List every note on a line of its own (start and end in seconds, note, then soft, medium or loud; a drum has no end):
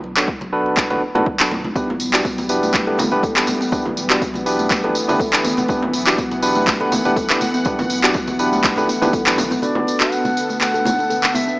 0.04 0.97 B1 medium
0.04 muted conga soft
0.17 0.28 B3 medium
0.17 0.28 D4 medium
0.17 0.28 F#4 medium
0.17 0.28 A4 medium
0.17 0.28 C#5 medium
0.17 clap medium
0.28 kick loud
0.41 muted conga soft
0.41 high conga loud
0.53 0.87 B3 medium
0.53 0.87 D4 medium
0.53 0.87 F#4 medium
0.53 0.87 A4 medium
0.53 0.87 B4 loud
0.66 muted conga soft
0.77 kick loud
0.77 clap medium
0.90 1.01 B3 medium
0.90 1.01 D4 medium
0.90 1.01 F#4 medium
0.90 1.01 A4 medium
0.90 1.01 B4 medium
0.90 muted conga soft
0.90 low conga medium
1.15 1.26 B3 medium
1.15 1.26 D4 medium
1.15 1.26 F#4 medium
1.15 1.26 A4 medium
1.15 1.26 B4 loud
1.15 muted conga soft
1.15 low conga loud
1.26 1.36 A1 loud
1.26 kick loud
1.26 high conga medium
1.39 1.71 B1 medium
1.39 1.51 B3 medium
1.39 1.51 D4 medium
1.39 1.51 F#4 medium
1.39 1.51 A4 medium
1.39 1.51 B4 medium
1.39 clap loud
1.51 muted conga soft
1.51 low conga medium
1.64 high conga medium
1.75 1.85 B1 loud
1.75 9.59 E3 medium
1.75 5.65 G3 medium
1.75 9.58 B3 medium
1.75 1.88 B3 medium
1.75 1.89 B3 medium
1.75 1.89 D4 medium
1.75 1.89 E4 medium
1.75 1.89 G4 medium
1.75 1.89 B4 medium
1.75 kick loud
1.75 tambourine soft
1.75 muted conga soft
1.75 high conga medium
1.90 low conga medium
2.00 2.94 B1 medium
2.00 tambourine medium
2.00 muted conga soft
2.13 2.24 B3 medium
2.13 2.24 D4 medium
2.13 2.24 E4 medium
2.13 2.20 F#4 medium
2.13 2.24 G4 medium
2.13 2.24 D5 medium
2.13 clap medium
2.13 tambourine soft
2.25 2.37 B3 medium
2.25 kick loud
2.25 tambourine soft
2.38 tambourine soft
2.38 muted conga soft
2.38 high conga loud
2.49 2.84 B3 loud
2.49 2.84 D4 medium
2.49 2.84 E4 medium
2.49 2.84 G4 medium
2.49 2.84 B4 loud
2.49 tambourine medium
2.63 2.73 A3 medium
2.63 tambourine soft
2.63 muted conga soft
2.74 2.87 A3 medium
2.74 kick loud
2.74 clap medium
2.74 tambourine soft
2.87 2.98 B3 medium
2.87 2.98 D4 medium
2.87 2.98 E4 medium
2.87 2.98 G4 medium
2.87 2.98 A4 medium
2.87 2.98 B4 medium
2.87 muted conga medium
2.98 3.11 B3 medium
2.98 tambourine loud
2.98 high conga loud
2.98 low conga loud
3.11 3.23 B3 medium
3.11 3.23 D4 medium
3.11 3.23 E4 medium
3.11 3.23 G4 medium
3.11 3.23 B4 loud
3.11 tambourine soft
3.11 muted conga soft
3.11 high conga medium
3.23 3.33 B1 medium
3.23 3.30 A4 medium
3.23 kick loud
3.23 tambourine soft
3.23 high conga medium
3.36 3.48 B3 medium
3.36 3.48 D4 medium
3.36 3.48 E4 medium
3.36 3.48 G4 medium
3.36 3.48 B4 medium
3.36 clap medium
3.36 tambourine soft
3.47 3.60 B3 medium
3.47 tambourine medium
3.47 muted conga soft
3.47 high conga medium
3.61 3.71 B3 loud
3.61 tambourine soft
3.72 3.82 B1 medium
3.72 3.85 B3 medium
3.72 3.85 D4 medium
3.72 3.85 E4 medium
3.72 3.85 G4 medium
3.72 3.85 B4 medium
3.72 kick loud
3.72 tambourine soft
3.72 muted conga soft
3.85 low conga medium
3.97 4.90 B1 medium
3.97 tambourine medium
3.97 muted conga soft
4.10 4.21 B3 medium
4.10 4.21 D4 medium
4.10 4.21 E4 medium
4.10 4.16 F#4 medium
4.10 4.21 G4 medium
4.10 4.21 D5 medium
4.10 clap medium
4.10 tambourine soft
4.21 4.34 B3 medium
4.21 kick loud
4.21 tambourine medium
4.34 tambourine soft
4.34 muted conga medium
4.34 high conga loud
4.46 4.81 B3 medium
4.46 4.81 D4 medium
4.46 4.81 E4 medium
4.46 4.81 G4 medium
4.46 4.81 B4 loud
4.46 tambourine medium
4.59 4.69 A3 medium
4.59 tambourine soft
4.59 muted conga soft
4.71 4.83 A3 medium
4.71 kick loud
4.71 clap medium
4.71 tambourine medium
4.84 4.95 B3 medium
4.84 4.95 D4 medium
4.84 4.95 E4 medium
4.84 4.95 G4 medium
4.84 4.95 A4 medium
4.84 4.95 B4 medium
4.84 muted conga medium
4.84 low conga medium
4.95 5.08 B3 medium
4.95 tambourine medium
5.09 5.19 B3 medium
5.09 5.20 D4 medium
5.09 5.20 E4 medium
5.09 5.20 G4 medium
5.09 5.20 B4 loud
5.09 tambourine soft
5.09 muted conga soft
5.09 low conga loud
5.19 5.27 A4 medium
5.19 kick loud
5.19 tambourine soft
5.19 high conga medium
5.33 5.44 B3 medium
5.33 5.44 D4 medium
5.33 5.44 E4 medium
5.33 5.44 G4 medium
5.33 5.44 B4 medium
5.33 clap medium
5.33 tambourine soft
5.44 5.56 B3 medium
5.44 tambourine medium
5.44 muted conga soft
5.44 low conga medium
5.57 5.68 B3 medium
5.57 tambourine soft
5.57 high conga medium
5.68 5.79 B1 loud
5.68 5.82 B3 medium
5.68 5.82 D4 medium
5.68 5.82 E4 medium
5.68 5.82 G4 medium
5.68 5.82 B4 medium
5.68 9.58 F#5 medium
5.68 kick loud
5.68 tambourine soft
5.68 muted conga medium
5.68 high conga medium
5.82 low conga loud
5.93 6.87 B1 medium
5.93 tambourine medium
5.93 muted conga soft
6.07 6.18 B3 medium
6.07 6.18 D4 medium
6.07 6.18 E4 medium
6.07 6.13 F#4 medium
6.07 6.18 G4 medium
6.07 6.18 D5 medium
6.07 clap medium
6.07 tambourine soft
6.18 6.31 B3 medium
6.18 kick loud
6.18 tambourine soft
6.31 tambourine soft
6.31 muted conga medium
6.31 high conga medium
6.42 6.77 B3 loud
6.42 6.77 D4 medium
6.42 6.77 E4 medium
6.42 6.77 G4 medium
6.42 6.77 B4 loud
6.42 tambourine medium
6.55 6.66 A3 medium
6.55 tambourine soft
6.55 muted conga soft
6.67 6.80 A3 medium
6.67 kick loud
6.67 clap medium
6.67 tambourine soft
6.80 6.92 B3 medium
6.80 6.92 D4 medium
6.80 6.92 E4 medium
6.80 6.92 G4 medium
6.80 6.91 A4 medium
6.80 6.92 B4 medium
6.80 muted conga medium
6.92 7.05 B3 medium
6.92 tambourine medium
6.92 high conga loud
6.92 low conga medium
7.05 7.16 B3 medium
7.05 7.16 D4 medium
7.05 7.16 E4 medium
7.05 7.16 G4 medium
7.05 7.16 B4 loud
7.05 tambourine soft
7.05 muted conga soft
7.05 high conga medium
7.16 7.26 B1 medium
7.16 7.24 A4 medium
7.16 kick loud
7.16 tambourine medium
7.16 high conga medium
7.30 7.41 B3 medium
7.30 7.41 D4 medium
7.30 7.41 E4 medium
7.30 7.41 G4 medium
7.30 7.41 B4 medium
7.30 clap medium
7.30 tambourine soft
7.41 7.53 B3 medium
7.41 tambourine medium
7.41 muted conga soft
7.41 high conga medium
7.54 7.64 B3 loud
7.54 tambourine soft
7.65 7.75 B1 loud
7.65 7.78 B3 medium
7.65 7.79 B3 medium
7.65 7.79 D4 medium
7.65 7.79 E4 medium
7.65 7.79 G4 medium
7.65 7.79 B4 loud
7.65 kick loud
7.65 tambourine soft
7.65 muted conga medium
7.65 high conga medium
7.79 tambourine soft
7.79 low conga loud
7.90 8.84 B1 medium
7.90 tambourine medium
7.90 muted conga soft
8.04 8.15 B3 medium
8.04 8.15 D4 medium
8.04 8.15 E4 medium
8.04 8.10 F#4 medium
8.04 8.15 G4 medium
8.04 8.15 D5 medium
8.04 clap medium
8.04 tambourine soft
8.14 8.28 B3 medium
8.14 kick loud
8.14 tambourine soft
8.27 tambourine soft
8.27 muted conga medium
8.27 high conga loud
8.39 8.74 B3 loud
8.39 8.74 D4 medium
8.39 8.74 E4 medium
8.39 8.74 G4 medium
8.39 8.74 B4 loud
8.39 tambourine medium
8.53 8.63 A3 medium
8.53 tambourine soft
8.53 muted conga soft
8.64 8.77 A3 medium
8.64 kick loud
8.64 clap medium
8.64 tambourine soft
8.76 8.88 B3 medium
8.76 8.88 D4 medium
8.76 8.88 E4 medium
8.76 8.88 G4 medium
8.76 8.88 A4 medium
8.76 8.88 B4 medium
8.76 tambourine soft
8.76 muted conga medium
8.76 low conga medium
8.89 9.01 B3 medium
8.89 tambourine medium
9.02 9.13 B3 medium
9.02 9.13 D4 medium
9.02 9.13 E4 medium
9.02 9.13 G4 medium
9.02 9.13 B4 loud
9.02 tambourine soft
9.02 muted conga soft
9.02 low conga loud
9.13 9.23 A1 loud
9.13 9.21 A4 medium
9.13 kick loud
9.13 tambourine medium
9.13 high conga medium
9.27 9.58 B1 medium
9.27 9.38 B3 medium
9.27 9.38 D4 medium
9.27 9.38 E4 medium
9.27 9.38 G4 medium
9.27 9.38 B4 medium
9.27 clap medium
9.27 tambourine soft
9.38 9.50 B3 medium
9.38 tambourine medium
9.38 muted conga medium
9.38 low conga loud
9.51 9.61 B3 loud
9.51 tambourine soft
9.51 high conga medium
9.62 11.60 D3 medium
9.62 9.75 B3 medium
9.62 11.60 B3 medium
9.62 11.60 D4 medium
9.62 11.60 F#4 medium
9.62 11.60 A4 medium
9.62 11.60 B4 medium
9.62 10.13 D5 medium
9.62 tambourine soft
9.62 muted conga soft
9.62 high conga medium
9.75 low conga loud
9.87 tambourine medium
9.87 muted conga soft
10.00 10.07 F#4 medium
10.00 clap medium
10.00 tambourine soft
10.12 10.24 B3 medium
10.12 10.61 F#5 loud
10.12 tambourine soft
10.25 tambourine soft
10.25 muted conga soft
10.25 high conga medium
10.37 tambourine medium
10.49 10.60 A3 medium
10.49 tambourine soft
10.49 muted conga soft
10.61 10.74 A3 medium
10.61 11.36 F#5 loud
10.61 clap medium
10.61 tambourine soft
10.74 10.85 A4 medium
10.74 tambourine soft
10.74 muted conga soft
10.85 10.98 B3 medium
10.85 tambourine medium
10.85 high conga loud
10.85 low conga medium
10.99 tambourine soft
10.99 muted conga soft
10.99 high conga medium
11.10 11.17 A4 medium
11.10 tambourine soft
11.10 high conga medium
11.24 clap medium
11.24 tambourine soft
11.35 11.47 B3 medium
11.35 11.60 E5 medium
11.35 tambourine medium
11.35 muted conga medium
11.35 high conga loud
11.48 11.58 B3 medium
11.48 tambourine soft